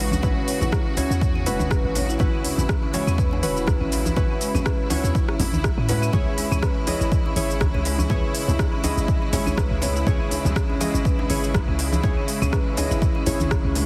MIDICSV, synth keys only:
0, 0, Header, 1, 2, 480
1, 0, Start_track
1, 0, Key_signature, 4, "minor"
1, 0, Tempo, 491803
1, 227, Time_signature, 4, 2, 24, 8
1, 13526, End_track
2, 0, Start_track
2, 0, Title_t, "Synth keys"
2, 0, Program_c, 0, 88
2, 0, Note_on_c, 0, 61, 92
2, 0, Note_on_c, 0, 64, 81
2, 0, Note_on_c, 0, 66, 86
2, 0, Note_on_c, 0, 71, 99
2, 201, Note_off_c, 0, 61, 0
2, 201, Note_off_c, 0, 64, 0
2, 201, Note_off_c, 0, 66, 0
2, 201, Note_off_c, 0, 71, 0
2, 227, Note_on_c, 0, 66, 84
2, 227, Note_on_c, 0, 71, 101
2, 228, Note_on_c, 0, 61, 91
2, 228, Note_on_c, 0, 64, 84
2, 921, Note_off_c, 0, 64, 0
2, 921, Note_off_c, 0, 66, 0
2, 921, Note_off_c, 0, 71, 0
2, 922, Note_off_c, 0, 61, 0
2, 947, Note_on_c, 0, 66, 73
2, 948, Note_on_c, 0, 61, 83
2, 948, Note_on_c, 0, 64, 74
2, 948, Note_on_c, 0, 73, 92
2, 1406, Note_off_c, 0, 61, 0
2, 1406, Note_off_c, 0, 64, 0
2, 1406, Note_off_c, 0, 66, 0
2, 1406, Note_off_c, 0, 73, 0
2, 1427, Note_on_c, 0, 64, 84
2, 1427, Note_on_c, 0, 66, 86
2, 1428, Note_on_c, 0, 61, 94
2, 1428, Note_on_c, 0, 71, 101
2, 2121, Note_off_c, 0, 64, 0
2, 2121, Note_off_c, 0, 66, 0
2, 2121, Note_off_c, 0, 71, 0
2, 2122, Note_off_c, 0, 61, 0
2, 2147, Note_on_c, 0, 61, 91
2, 2147, Note_on_c, 0, 64, 86
2, 2147, Note_on_c, 0, 66, 83
2, 2147, Note_on_c, 0, 71, 101
2, 2841, Note_off_c, 0, 61, 0
2, 2841, Note_off_c, 0, 64, 0
2, 2841, Note_off_c, 0, 66, 0
2, 2841, Note_off_c, 0, 71, 0
2, 2867, Note_on_c, 0, 61, 82
2, 2867, Note_on_c, 0, 64, 75
2, 2867, Note_on_c, 0, 66, 79
2, 2867, Note_on_c, 0, 73, 91
2, 3325, Note_off_c, 0, 61, 0
2, 3325, Note_off_c, 0, 64, 0
2, 3325, Note_off_c, 0, 73, 0
2, 3326, Note_off_c, 0, 66, 0
2, 3346, Note_on_c, 0, 61, 91
2, 3347, Note_on_c, 0, 64, 88
2, 3347, Note_on_c, 0, 66, 87
2, 3347, Note_on_c, 0, 71, 105
2, 4041, Note_off_c, 0, 61, 0
2, 4041, Note_off_c, 0, 64, 0
2, 4041, Note_off_c, 0, 66, 0
2, 4041, Note_off_c, 0, 71, 0
2, 4066, Note_on_c, 0, 64, 88
2, 4067, Note_on_c, 0, 61, 91
2, 4067, Note_on_c, 0, 66, 85
2, 4067, Note_on_c, 0, 71, 102
2, 4761, Note_off_c, 0, 61, 0
2, 4761, Note_off_c, 0, 64, 0
2, 4761, Note_off_c, 0, 66, 0
2, 4761, Note_off_c, 0, 71, 0
2, 4785, Note_on_c, 0, 61, 83
2, 4785, Note_on_c, 0, 64, 77
2, 4786, Note_on_c, 0, 66, 77
2, 4786, Note_on_c, 0, 73, 92
2, 5245, Note_off_c, 0, 61, 0
2, 5245, Note_off_c, 0, 64, 0
2, 5245, Note_off_c, 0, 66, 0
2, 5245, Note_off_c, 0, 73, 0
2, 5748, Note_on_c, 0, 61, 92
2, 5749, Note_on_c, 0, 64, 85
2, 5749, Note_on_c, 0, 66, 86
2, 5749, Note_on_c, 0, 71, 103
2, 5962, Note_off_c, 0, 61, 0
2, 5962, Note_off_c, 0, 64, 0
2, 5962, Note_off_c, 0, 66, 0
2, 5962, Note_off_c, 0, 71, 0
2, 5988, Note_on_c, 0, 73, 100
2, 5989, Note_on_c, 0, 61, 93
2, 5989, Note_on_c, 0, 64, 84
2, 5989, Note_on_c, 0, 68, 85
2, 6682, Note_off_c, 0, 61, 0
2, 6682, Note_off_c, 0, 64, 0
2, 6682, Note_off_c, 0, 68, 0
2, 6682, Note_off_c, 0, 73, 0
2, 6707, Note_on_c, 0, 61, 83
2, 6707, Note_on_c, 0, 64, 75
2, 6707, Note_on_c, 0, 68, 75
2, 6707, Note_on_c, 0, 75, 89
2, 7165, Note_off_c, 0, 61, 0
2, 7165, Note_off_c, 0, 64, 0
2, 7165, Note_off_c, 0, 68, 0
2, 7165, Note_off_c, 0, 75, 0
2, 7188, Note_on_c, 0, 64, 85
2, 7188, Note_on_c, 0, 73, 103
2, 7189, Note_on_c, 0, 61, 93
2, 7189, Note_on_c, 0, 68, 85
2, 7882, Note_off_c, 0, 61, 0
2, 7882, Note_off_c, 0, 64, 0
2, 7882, Note_off_c, 0, 68, 0
2, 7882, Note_off_c, 0, 73, 0
2, 7906, Note_on_c, 0, 64, 83
2, 7906, Note_on_c, 0, 73, 103
2, 7907, Note_on_c, 0, 61, 92
2, 7907, Note_on_c, 0, 68, 85
2, 8601, Note_off_c, 0, 61, 0
2, 8601, Note_off_c, 0, 64, 0
2, 8601, Note_off_c, 0, 68, 0
2, 8601, Note_off_c, 0, 73, 0
2, 8627, Note_on_c, 0, 61, 81
2, 8627, Note_on_c, 0, 64, 77
2, 8627, Note_on_c, 0, 68, 79
2, 8627, Note_on_c, 0, 75, 91
2, 9085, Note_off_c, 0, 61, 0
2, 9085, Note_off_c, 0, 75, 0
2, 9086, Note_off_c, 0, 64, 0
2, 9086, Note_off_c, 0, 68, 0
2, 9106, Note_on_c, 0, 61, 92
2, 9106, Note_on_c, 0, 64, 86
2, 9106, Note_on_c, 0, 68, 85
2, 9106, Note_on_c, 0, 73, 102
2, 9801, Note_off_c, 0, 61, 0
2, 9801, Note_off_c, 0, 64, 0
2, 9801, Note_off_c, 0, 68, 0
2, 9801, Note_off_c, 0, 73, 0
2, 9827, Note_on_c, 0, 61, 91
2, 9827, Note_on_c, 0, 64, 85
2, 9827, Note_on_c, 0, 68, 84
2, 9828, Note_on_c, 0, 73, 101
2, 10521, Note_off_c, 0, 61, 0
2, 10521, Note_off_c, 0, 64, 0
2, 10521, Note_off_c, 0, 68, 0
2, 10521, Note_off_c, 0, 73, 0
2, 10547, Note_on_c, 0, 64, 74
2, 10548, Note_on_c, 0, 61, 82
2, 10548, Note_on_c, 0, 68, 76
2, 10548, Note_on_c, 0, 75, 91
2, 11006, Note_off_c, 0, 61, 0
2, 11006, Note_off_c, 0, 64, 0
2, 11006, Note_off_c, 0, 68, 0
2, 11006, Note_off_c, 0, 75, 0
2, 11027, Note_on_c, 0, 68, 88
2, 11028, Note_on_c, 0, 61, 91
2, 11028, Note_on_c, 0, 64, 87
2, 11028, Note_on_c, 0, 73, 101
2, 11721, Note_off_c, 0, 61, 0
2, 11721, Note_off_c, 0, 64, 0
2, 11721, Note_off_c, 0, 68, 0
2, 11722, Note_off_c, 0, 73, 0
2, 11747, Note_on_c, 0, 61, 92
2, 11748, Note_on_c, 0, 64, 86
2, 11748, Note_on_c, 0, 68, 86
2, 11748, Note_on_c, 0, 73, 101
2, 12441, Note_off_c, 0, 61, 0
2, 12442, Note_off_c, 0, 64, 0
2, 12442, Note_off_c, 0, 68, 0
2, 12442, Note_off_c, 0, 73, 0
2, 12467, Note_on_c, 0, 61, 83
2, 12467, Note_on_c, 0, 64, 75
2, 12467, Note_on_c, 0, 68, 74
2, 12467, Note_on_c, 0, 75, 90
2, 12926, Note_off_c, 0, 61, 0
2, 12926, Note_off_c, 0, 64, 0
2, 12926, Note_off_c, 0, 68, 0
2, 12926, Note_off_c, 0, 75, 0
2, 12947, Note_on_c, 0, 68, 83
2, 12948, Note_on_c, 0, 61, 91
2, 12948, Note_on_c, 0, 64, 83
2, 12948, Note_on_c, 0, 73, 101
2, 13526, Note_off_c, 0, 61, 0
2, 13526, Note_off_c, 0, 64, 0
2, 13526, Note_off_c, 0, 68, 0
2, 13526, Note_off_c, 0, 73, 0
2, 13526, End_track
0, 0, End_of_file